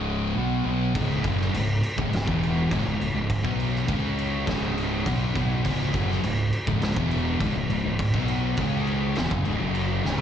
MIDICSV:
0, 0, Header, 1, 4, 480
1, 0, Start_track
1, 0, Key_signature, 4, "minor"
1, 0, Tempo, 587084
1, 777, Time_signature, 4, 2, 24, 8
1, 8351, End_track
2, 0, Start_track
2, 0, Title_t, "Distorted electric guitar"
2, 0, Program_c, 0, 30
2, 0, Note_on_c, 0, 37, 97
2, 0, Note_on_c, 0, 44, 106
2, 0, Note_on_c, 0, 49, 106
2, 286, Note_off_c, 0, 37, 0
2, 288, Note_off_c, 0, 44, 0
2, 290, Note_off_c, 0, 49, 0
2, 292, Note_on_c, 0, 47, 108
2, 297, Note_on_c, 0, 54, 99
2, 298, Note_on_c, 0, 59, 101
2, 522, Note_off_c, 0, 47, 0
2, 527, Note_off_c, 0, 54, 0
2, 530, Note_off_c, 0, 59, 0
2, 532, Note_on_c, 0, 47, 95
2, 537, Note_on_c, 0, 54, 104
2, 539, Note_on_c, 0, 59, 113
2, 767, Note_off_c, 0, 47, 0
2, 769, Note_off_c, 0, 54, 0
2, 770, Note_off_c, 0, 59, 0
2, 772, Note_on_c, 0, 37, 91
2, 777, Note_on_c, 0, 44, 107
2, 780, Note_on_c, 0, 49, 107
2, 1006, Note_off_c, 0, 49, 0
2, 1007, Note_off_c, 0, 37, 0
2, 1009, Note_off_c, 0, 44, 0
2, 1014, Note_on_c, 0, 42, 109
2, 1016, Note_on_c, 0, 49, 99
2, 1021, Note_on_c, 0, 54, 106
2, 1248, Note_off_c, 0, 42, 0
2, 1249, Note_off_c, 0, 49, 0
2, 1252, Note_off_c, 0, 54, 0
2, 1254, Note_on_c, 0, 37, 70
2, 1257, Note_on_c, 0, 44, 73
2, 1447, Note_off_c, 0, 37, 0
2, 1449, Note_off_c, 0, 44, 0
2, 1613, Note_on_c, 0, 37, 91
2, 1619, Note_on_c, 0, 44, 109
2, 1722, Note_off_c, 0, 37, 0
2, 1727, Note_off_c, 0, 44, 0
2, 1732, Note_on_c, 0, 37, 67
2, 1736, Note_on_c, 0, 44, 79
2, 1845, Note_off_c, 0, 37, 0
2, 1849, Note_off_c, 0, 44, 0
2, 1849, Note_on_c, 0, 40, 86
2, 1852, Note_on_c, 0, 47, 93
2, 1857, Note_on_c, 0, 52, 102
2, 2206, Note_off_c, 0, 40, 0
2, 2207, Note_off_c, 0, 47, 0
2, 2210, Note_off_c, 0, 52, 0
2, 2211, Note_on_c, 0, 37, 108
2, 2220, Note_on_c, 0, 44, 116
2, 2323, Note_off_c, 0, 37, 0
2, 2325, Note_off_c, 0, 44, 0
2, 2332, Note_on_c, 0, 37, 73
2, 2335, Note_on_c, 0, 44, 70
2, 2443, Note_off_c, 0, 37, 0
2, 2446, Note_off_c, 0, 44, 0
2, 2453, Note_on_c, 0, 37, 70
2, 2455, Note_on_c, 0, 44, 76
2, 2560, Note_off_c, 0, 37, 0
2, 2560, Note_off_c, 0, 44, 0
2, 2569, Note_on_c, 0, 37, 65
2, 2570, Note_on_c, 0, 44, 69
2, 2765, Note_off_c, 0, 37, 0
2, 2766, Note_off_c, 0, 44, 0
2, 2807, Note_on_c, 0, 47, 98
2, 2812, Note_on_c, 0, 54, 98
2, 2819, Note_on_c, 0, 59, 89
2, 3161, Note_off_c, 0, 54, 0
2, 3164, Note_on_c, 0, 49, 100
2, 3165, Note_off_c, 0, 47, 0
2, 3170, Note_off_c, 0, 59, 0
2, 3173, Note_on_c, 0, 56, 109
2, 3177, Note_on_c, 0, 61, 112
2, 3644, Note_off_c, 0, 49, 0
2, 3648, Note_off_c, 0, 56, 0
2, 3649, Note_on_c, 0, 37, 109
2, 3650, Note_off_c, 0, 61, 0
2, 3655, Note_on_c, 0, 44, 97
2, 3657, Note_on_c, 0, 49, 111
2, 4123, Note_off_c, 0, 37, 0
2, 4126, Note_on_c, 0, 47, 95
2, 4128, Note_off_c, 0, 44, 0
2, 4130, Note_off_c, 0, 49, 0
2, 4132, Note_on_c, 0, 54, 109
2, 4139, Note_on_c, 0, 59, 111
2, 4357, Note_off_c, 0, 47, 0
2, 4363, Note_off_c, 0, 54, 0
2, 4366, Note_off_c, 0, 59, 0
2, 4366, Note_on_c, 0, 47, 97
2, 4373, Note_on_c, 0, 54, 105
2, 4376, Note_on_c, 0, 59, 107
2, 4603, Note_off_c, 0, 47, 0
2, 4607, Note_on_c, 0, 37, 103
2, 4608, Note_off_c, 0, 54, 0
2, 4609, Note_off_c, 0, 59, 0
2, 4613, Note_on_c, 0, 44, 110
2, 4617, Note_on_c, 0, 49, 121
2, 4841, Note_off_c, 0, 49, 0
2, 4844, Note_off_c, 0, 37, 0
2, 4847, Note_on_c, 0, 42, 101
2, 4848, Note_off_c, 0, 44, 0
2, 4851, Note_on_c, 0, 49, 97
2, 4854, Note_on_c, 0, 54, 116
2, 5085, Note_off_c, 0, 42, 0
2, 5087, Note_off_c, 0, 49, 0
2, 5088, Note_off_c, 0, 54, 0
2, 5090, Note_on_c, 0, 37, 66
2, 5095, Note_on_c, 0, 44, 72
2, 5286, Note_off_c, 0, 37, 0
2, 5288, Note_off_c, 0, 44, 0
2, 5453, Note_on_c, 0, 37, 94
2, 5459, Note_on_c, 0, 44, 104
2, 5568, Note_off_c, 0, 37, 0
2, 5571, Note_off_c, 0, 44, 0
2, 5578, Note_on_c, 0, 37, 75
2, 5580, Note_on_c, 0, 44, 76
2, 5687, Note_off_c, 0, 37, 0
2, 5690, Note_on_c, 0, 40, 96
2, 5696, Note_off_c, 0, 44, 0
2, 5699, Note_on_c, 0, 47, 96
2, 5699, Note_on_c, 0, 52, 93
2, 6046, Note_off_c, 0, 40, 0
2, 6050, Note_on_c, 0, 37, 103
2, 6051, Note_off_c, 0, 47, 0
2, 6051, Note_off_c, 0, 52, 0
2, 6060, Note_on_c, 0, 44, 112
2, 6166, Note_off_c, 0, 37, 0
2, 6166, Note_off_c, 0, 44, 0
2, 6175, Note_on_c, 0, 37, 71
2, 6176, Note_on_c, 0, 44, 75
2, 6282, Note_off_c, 0, 37, 0
2, 6287, Note_off_c, 0, 44, 0
2, 6292, Note_on_c, 0, 37, 70
2, 6297, Note_on_c, 0, 44, 83
2, 6400, Note_off_c, 0, 37, 0
2, 6400, Note_off_c, 0, 44, 0
2, 6410, Note_on_c, 0, 37, 66
2, 6410, Note_on_c, 0, 44, 78
2, 6605, Note_off_c, 0, 37, 0
2, 6605, Note_off_c, 0, 44, 0
2, 6655, Note_on_c, 0, 47, 87
2, 6659, Note_on_c, 0, 54, 102
2, 6665, Note_on_c, 0, 59, 108
2, 7003, Note_off_c, 0, 54, 0
2, 7007, Note_on_c, 0, 49, 93
2, 7009, Note_off_c, 0, 47, 0
2, 7009, Note_off_c, 0, 59, 0
2, 7013, Note_on_c, 0, 56, 100
2, 7017, Note_on_c, 0, 61, 109
2, 7484, Note_off_c, 0, 49, 0
2, 7487, Note_off_c, 0, 56, 0
2, 7489, Note_off_c, 0, 61, 0
2, 7492, Note_on_c, 0, 40, 109
2, 7498, Note_on_c, 0, 47, 104
2, 7606, Note_off_c, 0, 40, 0
2, 7609, Note_on_c, 0, 42, 89
2, 7610, Note_off_c, 0, 47, 0
2, 7615, Note_on_c, 0, 49, 111
2, 7721, Note_off_c, 0, 42, 0
2, 7725, Note_on_c, 0, 37, 91
2, 7728, Note_off_c, 0, 49, 0
2, 7732, Note_on_c, 0, 44, 104
2, 7843, Note_off_c, 0, 37, 0
2, 7847, Note_off_c, 0, 44, 0
2, 7848, Note_on_c, 0, 42, 97
2, 7855, Note_on_c, 0, 49, 101
2, 7857, Note_on_c, 0, 54, 100
2, 8202, Note_off_c, 0, 42, 0
2, 8205, Note_off_c, 0, 49, 0
2, 8205, Note_on_c, 0, 37, 93
2, 8209, Note_off_c, 0, 54, 0
2, 8211, Note_on_c, 0, 44, 100
2, 8215, Note_on_c, 0, 49, 105
2, 8351, Note_off_c, 0, 37, 0
2, 8351, Note_off_c, 0, 44, 0
2, 8351, Note_off_c, 0, 49, 0
2, 8351, End_track
3, 0, Start_track
3, 0, Title_t, "Fingered electric bass"
3, 0, Program_c, 1, 33
3, 0, Note_on_c, 1, 25, 101
3, 266, Note_off_c, 1, 25, 0
3, 306, Note_on_c, 1, 35, 91
3, 525, Note_off_c, 1, 35, 0
3, 539, Note_on_c, 1, 35, 95
3, 761, Note_off_c, 1, 35, 0
3, 779, Note_on_c, 1, 25, 101
3, 1001, Note_off_c, 1, 25, 0
3, 1018, Note_on_c, 1, 30, 107
3, 1240, Note_off_c, 1, 30, 0
3, 1254, Note_on_c, 1, 25, 89
3, 1479, Note_off_c, 1, 25, 0
3, 1620, Note_on_c, 1, 25, 108
3, 1730, Note_off_c, 1, 25, 0
3, 1738, Note_on_c, 1, 25, 79
3, 1849, Note_off_c, 1, 25, 0
3, 1859, Note_on_c, 1, 28, 103
3, 2193, Note_off_c, 1, 28, 0
3, 2220, Note_on_c, 1, 25, 103
3, 2327, Note_off_c, 1, 25, 0
3, 2332, Note_on_c, 1, 25, 94
3, 2446, Note_off_c, 1, 25, 0
3, 2460, Note_on_c, 1, 25, 81
3, 2566, Note_off_c, 1, 25, 0
3, 2571, Note_on_c, 1, 25, 80
3, 2797, Note_off_c, 1, 25, 0
3, 2818, Note_on_c, 1, 35, 97
3, 3153, Note_off_c, 1, 35, 0
3, 3178, Note_on_c, 1, 37, 97
3, 3625, Note_off_c, 1, 37, 0
3, 3659, Note_on_c, 1, 25, 102
3, 4106, Note_off_c, 1, 25, 0
3, 4139, Note_on_c, 1, 35, 101
3, 4361, Note_off_c, 1, 35, 0
3, 4378, Note_on_c, 1, 35, 99
3, 4601, Note_off_c, 1, 35, 0
3, 4617, Note_on_c, 1, 25, 109
3, 4840, Note_off_c, 1, 25, 0
3, 4859, Note_on_c, 1, 30, 105
3, 5081, Note_off_c, 1, 30, 0
3, 5092, Note_on_c, 1, 25, 88
3, 5317, Note_off_c, 1, 25, 0
3, 5457, Note_on_c, 1, 25, 109
3, 5562, Note_off_c, 1, 25, 0
3, 5567, Note_on_c, 1, 25, 84
3, 5683, Note_off_c, 1, 25, 0
3, 5696, Note_on_c, 1, 28, 106
3, 6031, Note_off_c, 1, 28, 0
3, 6054, Note_on_c, 1, 25, 99
3, 6161, Note_off_c, 1, 25, 0
3, 6166, Note_on_c, 1, 25, 86
3, 6283, Note_off_c, 1, 25, 0
3, 6289, Note_on_c, 1, 25, 85
3, 6404, Note_off_c, 1, 25, 0
3, 6415, Note_on_c, 1, 25, 86
3, 6639, Note_off_c, 1, 25, 0
3, 6655, Note_on_c, 1, 35, 100
3, 6990, Note_off_c, 1, 35, 0
3, 7012, Note_on_c, 1, 37, 95
3, 7462, Note_off_c, 1, 37, 0
3, 7507, Note_on_c, 1, 28, 101
3, 7610, Note_off_c, 1, 28, 0
3, 7615, Note_on_c, 1, 30, 98
3, 7727, Note_off_c, 1, 30, 0
3, 7741, Note_on_c, 1, 25, 102
3, 7850, Note_off_c, 1, 25, 0
3, 7865, Note_on_c, 1, 30, 89
3, 8196, Note_off_c, 1, 30, 0
3, 8223, Note_on_c, 1, 25, 97
3, 8351, Note_off_c, 1, 25, 0
3, 8351, End_track
4, 0, Start_track
4, 0, Title_t, "Drums"
4, 778, Note_on_c, 9, 36, 116
4, 778, Note_on_c, 9, 49, 95
4, 860, Note_off_c, 9, 36, 0
4, 860, Note_off_c, 9, 49, 0
4, 1015, Note_on_c, 9, 49, 74
4, 1016, Note_on_c, 9, 36, 111
4, 1097, Note_off_c, 9, 49, 0
4, 1098, Note_off_c, 9, 36, 0
4, 1152, Note_on_c, 9, 38, 32
4, 1233, Note_off_c, 9, 38, 0
4, 1262, Note_on_c, 9, 49, 95
4, 1344, Note_off_c, 9, 49, 0
4, 1499, Note_on_c, 9, 49, 75
4, 1580, Note_off_c, 9, 49, 0
4, 1619, Note_on_c, 9, 36, 114
4, 1701, Note_off_c, 9, 36, 0
4, 1742, Note_on_c, 9, 49, 86
4, 1754, Note_on_c, 9, 38, 113
4, 1824, Note_off_c, 9, 49, 0
4, 1835, Note_off_c, 9, 38, 0
4, 1860, Note_on_c, 9, 36, 119
4, 1942, Note_off_c, 9, 36, 0
4, 1989, Note_on_c, 9, 49, 68
4, 2071, Note_off_c, 9, 49, 0
4, 2219, Note_on_c, 9, 36, 101
4, 2224, Note_on_c, 9, 49, 84
4, 2301, Note_off_c, 9, 36, 0
4, 2306, Note_off_c, 9, 49, 0
4, 2463, Note_on_c, 9, 49, 66
4, 2545, Note_off_c, 9, 49, 0
4, 2697, Note_on_c, 9, 36, 112
4, 2698, Note_on_c, 9, 49, 98
4, 2778, Note_off_c, 9, 36, 0
4, 2780, Note_off_c, 9, 49, 0
4, 2817, Note_on_c, 9, 36, 91
4, 2899, Note_off_c, 9, 36, 0
4, 2940, Note_on_c, 9, 49, 65
4, 3022, Note_off_c, 9, 49, 0
4, 3068, Note_on_c, 9, 38, 36
4, 3150, Note_off_c, 9, 38, 0
4, 3176, Note_on_c, 9, 36, 121
4, 3178, Note_on_c, 9, 49, 82
4, 3258, Note_off_c, 9, 36, 0
4, 3260, Note_off_c, 9, 49, 0
4, 3422, Note_on_c, 9, 49, 63
4, 3503, Note_off_c, 9, 49, 0
4, 3657, Note_on_c, 9, 36, 109
4, 3660, Note_on_c, 9, 49, 79
4, 3671, Note_on_c, 9, 38, 104
4, 3739, Note_off_c, 9, 36, 0
4, 3741, Note_off_c, 9, 49, 0
4, 3753, Note_off_c, 9, 38, 0
4, 3905, Note_on_c, 9, 49, 65
4, 3987, Note_off_c, 9, 49, 0
4, 4138, Note_on_c, 9, 36, 103
4, 4143, Note_on_c, 9, 49, 87
4, 4220, Note_off_c, 9, 36, 0
4, 4225, Note_off_c, 9, 49, 0
4, 4378, Note_on_c, 9, 36, 111
4, 4386, Note_on_c, 9, 49, 67
4, 4460, Note_off_c, 9, 36, 0
4, 4468, Note_off_c, 9, 49, 0
4, 4618, Note_on_c, 9, 36, 116
4, 4624, Note_on_c, 9, 49, 95
4, 4700, Note_off_c, 9, 36, 0
4, 4706, Note_off_c, 9, 49, 0
4, 4857, Note_on_c, 9, 36, 113
4, 4863, Note_on_c, 9, 49, 65
4, 4939, Note_off_c, 9, 36, 0
4, 4945, Note_off_c, 9, 49, 0
4, 4991, Note_on_c, 9, 38, 33
4, 5073, Note_off_c, 9, 38, 0
4, 5099, Note_on_c, 9, 49, 86
4, 5180, Note_off_c, 9, 49, 0
4, 5336, Note_on_c, 9, 49, 67
4, 5418, Note_off_c, 9, 49, 0
4, 5455, Note_on_c, 9, 36, 119
4, 5537, Note_off_c, 9, 36, 0
4, 5574, Note_on_c, 9, 49, 89
4, 5585, Note_on_c, 9, 38, 114
4, 5656, Note_off_c, 9, 49, 0
4, 5667, Note_off_c, 9, 38, 0
4, 5695, Note_on_c, 9, 36, 117
4, 5776, Note_off_c, 9, 36, 0
4, 5814, Note_on_c, 9, 49, 69
4, 5895, Note_off_c, 9, 49, 0
4, 6053, Note_on_c, 9, 49, 86
4, 6054, Note_on_c, 9, 36, 107
4, 6135, Note_off_c, 9, 49, 0
4, 6136, Note_off_c, 9, 36, 0
4, 6295, Note_on_c, 9, 49, 71
4, 6377, Note_off_c, 9, 49, 0
4, 6532, Note_on_c, 9, 49, 102
4, 6534, Note_on_c, 9, 36, 115
4, 6613, Note_off_c, 9, 49, 0
4, 6616, Note_off_c, 9, 36, 0
4, 6654, Note_on_c, 9, 36, 97
4, 6736, Note_off_c, 9, 36, 0
4, 6770, Note_on_c, 9, 49, 66
4, 6852, Note_off_c, 9, 49, 0
4, 7006, Note_on_c, 9, 49, 93
4, 7012, Note_on_c, 9, 36, 116
4, 7088, Note_off_c, 9, 49, 0
4, 7094, Note_off_c, 9, 36, 0
4, 7253, Note_on_c, 9, 49, 64
4, 7335, Note_off_c, 9, 49, 0
4, 7485, Note_on_c, 9, 49, 80
4, 7496, Note_on_c, 9, 38, 114
4, 7567, Note_off_c, 9, 49, 0
4, 7578, Note_off_c, 9, 38, 0
4, 7613, Note_on_c, 9, 36, 117
4, 7695, Note_off_c, 9, 36, 0
4, 7727, Note_on_c, 9, 49, 64
4, 7809, Note_off_c, 9, 49, 0
4, 7969, Note_on_c, 9, 49, 80
4, 8050, Note_off_c, 9, 49, 0
4, 8220, Note_on_c, 9, 38, 73
4, 8302, Note_off_c, 9, 38, 0
4, 8325, Note_on_c, 9, 43, 101
4, 8351, Note_off_c, 9, 43, 0
4, 8351, End_track
0, 0, End_of_file